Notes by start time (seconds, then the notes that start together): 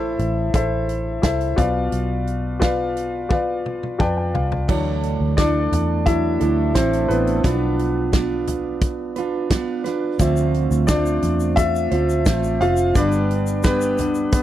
Already playing: A1 A2 E4 A4 C5 E5
0.19 A1, closed hi-hat
0.54 A1 E4 A4 C5 E5, kick, closed hi-hat
0.89 closed hi-hat
1.22 C2 E4 A4 C5 E5, kick, snare, closed hi-hat
1.41 closed hi-hat
1.56 B1 B2 F4 B4 D5 F5, kick, closed hi-hat, floor tom
1.92 B1, closed hi-hat
2.27 closed hi-hat
2.60 F4 B4 D5 F5, kick, snare, closed hi-hat
2.97 closed hi-hat
3.29 F4 B4 D5 F5, kick, high tom
3.66 mid tom
3.83 mid tom
3.99 F2 F4 B4 D5 G5 A5, kick, mid tom
4.17 G5
4.34 C2 F5, floor tom
4.52 floor tom
4.68 D2 D3 E3 F#3 A3 D4 E4 A4, kick, crash
5.03 closed hi-hat
5.20 D2
5.37 A3 D4 E4 A4 D5, kick, snare, closed hi-hat
5.72 E2, closed hi-hat, floor tom
6.06 E3 F#3 D4 E4 E5, kick, closed hi-hat
6.40 D2 A3 D4 E4 A4, closed hi-hat
6.74 A1 A3 C4 D4 E4 A4 C5, kick, snare, closed hi-hat
6.93 closed hi-hat
7.08 A1 A3 B3 D4 E4 A4 B4, closed hi-hat
7.27 closed hi-hat
7.43 B1 F3 B3 D4 F4 B4, kick, closed hi-hat
7.79 closed hi-hat
8.12 B3 D4 F4 B4, kick, snare, closed hi-hat
8.47 closed hi-hat, floor tom
8.81 kick, closed hi-hat
9.16 D4 F4 B4, closed hi-hat
9.50 B3 D4 F4 B4, kick, snare, closed hi-hat
9.84 D4 F4 B4, snare, closed hi-hat
10.19 D2 D3 F3 A3 C4 F4 C5 E5, kick, closed hi-hat, shaker
10.37 shaker
10.54 closed hi-hat
10.71 D2, shaker
10.87 A3 C4 D4 F4 D5, kick, snare, closed hi-hat, shaker
10.91 C5
11.06 shaker
11.22 E2, closed hi-hat, floor tom, shaker
11.40 shaker
11.56 F4 E5, kick, closed hi-hat, shaker
11.76 shaker
11.91 D2 C4 F4 C5, closed hi-hat
12.10 shaker
12.26 A1 A3 C4 F4 C5, kick, snare, closed hi-hat, shaker
12.44 shaker
12.61 F1 C4 F4 C5 F5, closed hi-hat
12.77 shaker
12.95 G1 G3 B3 D4 G4 B4 D5, kick, closed hi-hat, shaker
13.12 shaker
13.31 closed hi-hat
13.47 shaker
13.63 G3 B3 D4 G4 B4, kick, snare, closed hi-hat, shaker
13.81 shaker
13.98 G3 B3 D4, closed hi-hat, floor tom, shaker
14.15 shaker
14.32 B3 B4, kick, closed hi-hat, shaker